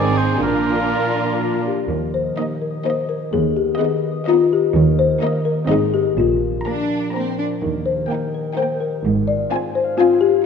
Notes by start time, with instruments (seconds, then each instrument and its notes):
Already playing: double bass section G#1, cello section G#2, harp G#2 D#4, viola section C4, violin section C4 D#4 G#4, oboe D5
0.09 harp C4
0.18 oboe C5
0.25 harp D#4 G#4
0.41 double bass section A#1, harp A#2, cello section A#2, violin section A#3 D4 F4, viola section D4, oboe A#4
0.57 harp A#3
0.74 harp F3
0.90 harp D4
1.07 harp F4
1.23 harp D4
1.40 harp A#3, marimba F4
1.57 harp F3
1.67 marimba G4
1.74 harp A#3
1.89 double bass section D#2, cello section D#2, harp D#3
2.07 harp G3
2.14 marimba C5
2.23 harp D#5
2.38 viola section A#3, violin section D#4 D#5, harp G4
2.55 harp D#5
2.62 marimba A#4
2.70 harp D#6
2.85 viola section A#3, violin section D#4 D#5, marimba C5, harp D#5
3.02 harp G4
3.09 marimba A#4
3.18 harp D#5
3.33 cello section D#2, double bass section D#2, harp D#3, marimba G#4
3.49 harp B3
3.57 marimba G4
3.65 harp D#5
3.79 viola section B3, violin section D#4 D#5, marimba G#4, harp B4
3.96 harp D#5
4.11 harp D#6
4.27 viola section B3, violin section D#4 D#5, marimba F4, harp D#5
4.43 harp B4
4.53 marimba G4
4.59 harp D#5
4.74 double bass section D#2, cello section D#2, harp D#3
4.91 harp A#3
4.99 marimba C5
5.06 harp D#5
5.21 viola section A#3, violin section D#4 D#5, harp A#4
5.37 harp D#5
5.45 marimba A#4
5.53 harp D#6
5.68 double bass section G#1, harp G#2, cello section G#2, viola section C4, violin section D#4 D#5, marimba G#4
5.86 harp C4
5.94 marimba G4
6.02 harp D#4 D#5
6.17 double bass section A#1, harp A#2, cello section A#2, marimba F4
6.34 harp F3
6.51 harp D4
6.66 viola section A#3, violin section D4 A#5, harp A#4
6.82 harp D4
6.98 harp D5
7.14 viola section A#3, violin section C4 A#5, harp A#4
7.31 harp D4
7.39 violin section D4
7.47 harp A#3
7.62 double bass section D#2, harp D#3, cello section D#3
7.79 harp A#3
7.86 marimba C5
7.95 harp G4
8.09 viola section A#3, violin section D#4 G5, harp A#4
8.26 harp D#5
8.34 marimba A#4
8.43 harp G5
8.56 viola section A#3, violin section D#4 G5, marimba C5, harp D#5
8.74 harp A#4
8.80 marimba A#4
8.90 harp G4
9.04 double bass section G#1, cello section G#2, harp G#2
9.21 harp G#3
9.28 marimba D5
9.36 harp F4
9.51 viola section C4, violin section F4 G#5, harp G#4
9.68 harp C5
9.75 marimba C5
9.84 harp F5
9.98 viola section C4, marimba F4, violin section F4 G#5, harp C5
10.14 harp G#4
10.21 marimba G4
10.29 harp F4